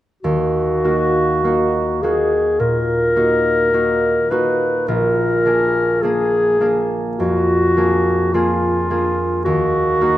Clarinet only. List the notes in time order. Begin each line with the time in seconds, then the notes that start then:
0.23 F#4
2.02 G#4
2.60 A#4
4.31 B4
4.88 A#4
6.02 G#4
7.17 F#4
8.33 F4
9.44 F#4